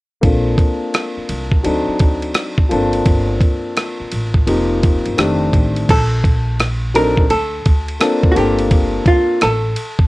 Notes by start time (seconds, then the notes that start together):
0.21 A#1 A#3 C4 D4 F4 A4, kick, ride
0.58 kick, ride
0.94 cross-stick, hi-hat pedal, ride
1.17 muted upright bass stroke
1.29 C2, ride
1.51 kick
1.63 D2 F#3 C4 D4 D#4 A4, ride
1.88 muted upright bass stroke
1.99 D2, kick, ride
2.22 ride
2.34 cross-stick, hi-hat pedal, ride
2.58 kick
2.69 G1 F3 A#3 C4 D4 A4, ride
2.93 ride
3.06 G1, kick, ride
3.41 kick, ride
3.77 cross-stick, hi-hat pedal, ride
4.00 muted upright bass stroke
4.12 A1, ride
4.35 kick
4.47 F1 F3 A#3 C4 D#4 G4, ride
4.83 kick, ride
5.05 G1, ride
5.17 F1 D#3 A3 C4 D4 G4, cross-stick, hi-hat pedal, ride
5.53 A1, kick, ride
5.77 ride
5.89 A#1 A4, kick, crash, ride
6.24 kick, ride
6.60 cross-stick, hi-hat pedal, ride
6.94 F#3 C4 D4 D#4 A4 A#4, ride
7.17 kick
7.30 D2 A4, ride
7.66 D2, kick, ride
7.88 ride
8.00 A#3 C4 D4 F4 A4, cross-stick, hi-hat pedal, ride
8.23 kick
8.32 A#3 C4 F#4
8.36 G1 D4 F4 G4 A4, ride
8.59 ride
8.71 kick, ride
9.06 F4, kick, ride
9.41 A1 A4, cross-stick, hi-hat pedal, ride
9.76 ride
9.99 kick